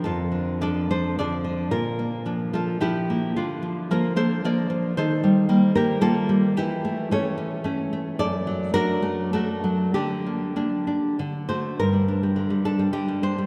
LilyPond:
\new Staff \with { instrumentName = "Nylon-string guitar" } { \time 3/4 \key bes \lydian \tempo 4 = 108 << { <f' a'>4 <a' d''>8 <a' c''>8 <a' d''>4 | <f' bes'>4. <f' a'>8 <e' g'>4 | <d' f'>4 <f' bes'>8 <a' c''>8 <bes' d''>4 | \key g \minor <a' c''>4. <g' bes'>8 <f' a'>4 |
<e' g'>4 <a' cis''>8 r4. | <a' d''>4 <fis' bes'>4 <fis' a'>4 | <d' g'>2 r8 c''8 | bes'4. a'8 g'8 c''8 | } \\ { f,8 d8 <f d'>8 f8 <f d'>8 d8 | bes,8 bes8 <f d'>8 f8 <f d'>8 bes8 | d8 f8 <f bes>8 bes8 <f bes>8 f8 | ees8 g8 <g bes>8 bes8 <g bes>8 g8 |
e8 a8 <a cis'>8 cis'8 <a cis'>8 a8 | fis,8 fis8 <a d'>8 a8 <a d'>8 fis8 | d8 bes8 <bes d'>8 d'8 d8 <a fis'>8 | g,16 g16 d'16 g16 d16 g16 d'16 g16 d16 g16 d'16 g16 | } >> }